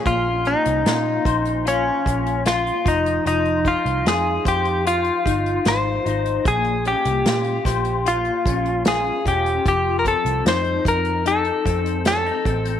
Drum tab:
HH |x-xxx-xxx-xxxxxx|xxxxx-xxxxxxx-xx|xxxxxxxxxxxxx-xx|x-xxxxxxxxxxxxxx|
SD |----o-------o---|----o-------o---|----o-o-----o---|----o-------o---|
BD |o-----o---o---o-|--o---o---o-----|o-----o---o---o-|o-o---o---o---o-|